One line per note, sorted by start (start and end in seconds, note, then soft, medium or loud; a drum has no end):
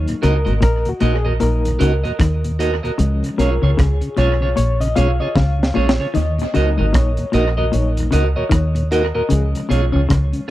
0.00 0.38 F#3 medium
0.00 0.39 A#3 medium
0.00 0.39 D#4 medium
0.08 0.15 D#2 medium
0.08 0.15 A#2 medium
0.08 closed hi-hat medium
0.22 0.45 C#2 medium
0.22 0.37 C#3 medium
0.22 0.34 A#3 medium
0.22 0.35 D#4 medium
0.22 0.36 F#4 medium
0.22 0.35 F#4 medium
0.22 0.36 A#4 medium
0.22 0.61 A#4 loud
0.22 0.37 D#5 medium
0.22 cross-stick medium
0.22 closed hi-hat medium
0.45 0.61 G#1 loud
0.45 0.55 D#2 medium
0.45 0.56 G#2 medium
0.45 0.54 A#2 medium
0.45 0.53 F#4 soft
0.45 0.53 A#4 medium
0.45 0.53 D#5 medium
0.45 closed hi-hat soft
0.61 0.85 A#1 medium
0.61 0.75 A#2 medium
0.61 0.89 A#4 loud
0.61 kick loud
0.61 cross-stick loud
0.61 closed hi-hat medium
0.85 0.93 D#2 medium
0.85 0.94 A#2 medium
0.85 1.16 F#4 medium
0.85 closed hi-hat medium
1.00 1.38 A#1 loud
1.00 1.25 A#2 medium
1.00 1.13 A#3 medium
1.00 1.13 D#4 medium
1.00 1.15 F#4 loud
1.00 1.13 F#4 medium
1.00 1.15 A#4 medium
1.00 1.15 D#5 loud
1.00 closed hi-hat medium
1.14 1.26 G#4 loud
1.25 1.33 D#2 medium
1.25 1.33 A#2 medium
1.25 1.33 F#4 medium
1.25 1.33 A#4 medium
1.25 1.32 D#5 medium
1.40 1.78 A#1 medium
1.40 1.64 A#2 medium
1.40 1.76 F#3 medium
1.40 1.76 A#3 soft
1.40 1.77 D#4 medium
1.40 2.55 A#4 loud
1.40 closed hi-hat medium
1.65 1.73 D#2 medium
1.65 1.73 A#2 medium
1.65 closed hi-hat medium
1.79 2.03 C#2 medium
1.79 1.95 C#3 medium
1.79 1.92 A#3 medium
1.79 1.92 D#4 medium
1.79 1.94 F#4 medium
1.79 1.93 F#4 medium
1.79 1.94 A#4 medium
1.79 1.94 D#5 medium
1.79 closed hi-hat medium
2.04 2.12 D#2 medium
2.04 2.13 A#2 medium
2.04 2.11 F#4 medium
2.04 2.11 A#4 medium
2.04 2.11 D#5 medium
2.04 closed hi-hat soft
2.19 2.80 D#2 loud
2.19 2.43 D#3 medium
2.19 kick loud
2.19 cross-stick loud
2.19 closed hi-hat loud
2.44 2.52 D#2 medium
2.44 2.52 A#2 medium
2.44 closed hi-hat medium
2.59 2.71 A#3 medium
2.59 2.71 D#4 medium
2.59 2.73 F#4 medium
2.59 2.71 F#4 medium
2.59 2.74 A#4 medium
2.59 2.74 D#5 medium
2.59 closed hi-hat medium
2.83 2.91 D#2 medium
2.83 2.91 A#2 medium
2.83 2.91 F#4 medium
2.83 2.91 A#4 medium
2.83 2.90 D#5 medium
2.83 closed hi-hat soft
2.98 3.21 C#2 loud
2.98 3.13 C#3 medium
2.98 3.55 F3 medium
2.98 3.55 G#3 medium
2.98 3.55 C#4 medium
2.98 closed hi-hat medium
3.23 3.31 C#3 medium
3.23 closed hi-hat medium
3.38 3.61 B1 medium
3.38 3.53 B2 medium
3.38 3.50 G#3 medium
3.38 3.50 C#4 medium
3.38 3.51 F4 medium
3.38 3.53 F4 medium
3.38 3.53 G#4 medium
3.38 3.79 A#4 medium
3.38 3.54 C#5 medium
3.38 closed hi-hat medium
3.62 3.77 C#2 medium
3.62 3.71 C#3 medium
3.62 3.70 C#3 medium
3.62 3.70 F4 medium
3.62 3.70 G#4 medium
3.62 3.70 C#5 medium
3.77 4.01 C#2 medium
3.77 3.92 C#3 medium
3.77 4.19 G#4 medium
3.77 kick loud
3.77 cross-stick loud
3.77 closed hi-hat medium
4.01 4.09 C#3 medium
4.01 closed hi-hat medium
4.17 4.54 B1 loud
4.17 4.41 B2 medium
4.17 4.29 G#3 medium
4.17 4.29 C#4 medium
4.17 4.29 F4 medium
4.17 4.31 F4 medium
4.17 4.32 G#4 loud
4.17 4.55 C#5 loud
4.17 4.32 C#5 loud
4.17 closed hi-hat medium
4.40 4.49 C#3 medium
4.40 4.49 F4 medium
4.40 4.49 G#4 medium
4.40 4.49 C#5 medium
4.56 4.94 A#1 medium
4.56 4.80 A#2 medium
4.56 4.81 C#5 loud
4.56 closed hi-hat medium
4.80 4.88 C#3 medium
4.80 4.97 D#5 loud
4.80 closed hi-hat medium
4.95 5.19 B1 medium
4.95 5.10 B2 medium
4.95 5.08 G#3 medium
4.95 5.08 C#4 medium
4.95 5.10 F4 medium
4.95 5.08 F4 medium
4.95 5.11 G#4 medium
4.95 5.11 C#5 medium
4.95 5.21 F5 loud
4.95 closed hi-hat medium
5.20 5.28 C#3 medium
5.20 5.28 F4 medium
5.20 5.28 G#4 medium
5.20 5.28 C#5 medium
5.20 5.35 D#5 loud
5.36 5.72 C#2 loud
5.36 5.60 C#3 medium
5.36 5.76 F5 loud
5.36 kick loud
5.36 snare medium
5.59 5.67 C#3 medium
5.59 snare medium
5.74 5.98 A#1 medium
5.74 5.89 A#2 medium
5.74 5.87 G#3 medium
5.74 5.87 C#4 medium
5.74 5.89 F4 medium
5.74 5.87 F4 medium
5.74 5.89 G#4 medium
5.74 6.16 C#5 medium
5.74 5.90 C#5 loud
5.89 snare loud
5.99 6.07 C#3 medium
5.99 6.07 F4 soft
5.99 6.07 G#4 medium
5.99 6.07 C#5 medium
6.14 6.38 D#2 loud
6.14 6.29 D#3 medium
6.14 6.54 D#5 loud
6.14 closed hi-hat medium
6.39 6.46 D#2 medium
6.39 6.46 A#2 medium
6.39 closed hi-hat medium
6.53 6.77 C#2 medium
6.53 6.68 C#3 medium
6.53 7.09 F#3 soft
6.53 6.66 A#3 medium
6.53 7.10 A#3 medium
6.53 6.66 D#4 medium
6.53 7.10 D#4 medium
6.53 6.66 F#4 medium
6.53 6.68 F#4 medium
6.53 6.69 A#4 medium
6.53 6.95 D#5 medium
6.53 6.69 D#5 loud
6.53 closed hi-hat medium
6.77 6.94 G#1 medium
6.77 6.86 D#2 medium
6.77 6.87 G#2 medium
6.77 6.86 A#2 medium
6.77 6.86 F#4 medium
6.77 6.86 A#4 medium
6.77 6.85 D#5 medium
6.93 7.16 A#1 medium
6.93 7.07 A#2 medium
6.93 7.35 C#5 medium
6.93 kick loud
6.93 cross-stick loud
6.93 closed hi-hat medium
7.17 7.26 D#2 medium
7.17 7.26 A#2 medium
7.17 closed hi-hat medium
7.32 7.70 A#1 loud
7.32 7.56 A#2 medium
7.32 7.45 A#3 medium
7.32 7.45 D#4 medium
7.32 7.47 F#4 medium
7.32 7.45 F#4 medium
7.32 7.48 A#4 loud
7.32 7.57 D#5 medium
7.32 7.48 D#5 medium
7.32 closed hi-hat medium
7.57 7.65 D#2 medium
7.57 7.65 A#2 medium
7.57 7.65 F#4 medium
7.57 7.65 A#4 medium
7.57 7.64 D#5 medium
7.57 7.74 D#5 medium
7.72 8.10 A#1 medium
7.72 7.96 A#2 medium
7.72 8.08 F#3 medium
7.72 8.08 A#3 soft
7.72 8.08 D#4 medium
7.72 7.91 C#5 medium
7.72 closed hi-hat medium
7.97 8.05 D#2 medium
7.97 8.05 A#2 medium
7.97 closed hi-hat medium
8.11 8.35 C#2 medium
8.11 8.26 C#3 medium
8.11 8.24 A#3 medium
8.11 8.24 D#4 medium
8.11 8.26 F#4 medium
8.11 8.24 F#4 medium
8.11 8.27 A#4 medium
8.11 8.27 D#5 medium
8.11 8.24 D#5 medium
8.11 closed hi-hat medium
8.36 8.44 D#2 medium
8.36 8.44 A#2 medium
8.36 8.44 F#4 medium
8.36 8.44 A#4 medium
8.36 8.88 C#5 medium
8.36 8.43 D#5 medium
8.49 9.11 D#2 medium
8.49 8.74 D#3 medium
8.49 kick loud
8.49 cross-stick loud
8.49 closed hi-hat loud
8.75 8.83 D#2 soft
8.75 8.83 A#2 medium
8.75 closed hi-hat medium
8.91 9.03 A#3 medium
8.91 9.03 D#4 medium
8.91 9.03 F#4 medium
8.91 9.05 F#4 medium
8.91 9.14 A#4 medium
8.91 9.05 A#4 medium
8.91 9.06 D#5 loud
8.91 closed hi-hat medium
9.15 9.23 D#2 medium
9.15 9.23 A#2 medium
9.15 9.22 F#4 medium
9.15 9.22 A#4 medium
9.15 9.31 A#4 medium
9.15 9.22 D#5 medium
9.29 9.53 C#2 loud
9.29 9.44 C#3 medium
9.29 10.50 F3 medium
9.29 10.50 G#3 soft
9.29 10.50 C#4 medium
9.29 9.48 G#4 medium
9.29 closed hi-hat medium
9.55 9.62 C#3 medium
9.55 closed hi-hat medium
9.69 9.93 B1 medium
9.69 9.84 B2 medium
9.69 9.82 G#3 medium
9.69 9.82 C#4 medium
9.69 9.84 F4 medium
9.69 9.82 F4 medium
9.69 9.84 G#4 medium
9.69 9.84 C#5 loud
9.69 closed hi-hat medium
9.92 10.09 C#2 loud
9.92 10.02 C#3 medium
9.92 10.01 C#3 medium
9.92 10.01 F4 soft
9.92 10.01 G#4 soft
9.92 10.01 C#5 medium
10.09 10.32 C#2 medium
10.09 10.23 C#3 medium
10.09 kick loud
10.09 cross-stick loud
10.09 closed hi-hat medium
10.33 10.41 C#3 medium
10.33 closed hi-hat medium